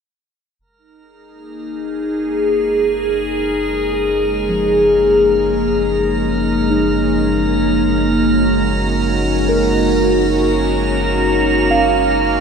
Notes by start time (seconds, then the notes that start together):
0.59 F#1 G#3 C#4 A#4 A#5
0.78 D#4
0.96 G#4
1.31 A#3
3.93 G#4
4.49 F3
6.70 D#4
7.66 F#4
9.48 A#4
11.71 F5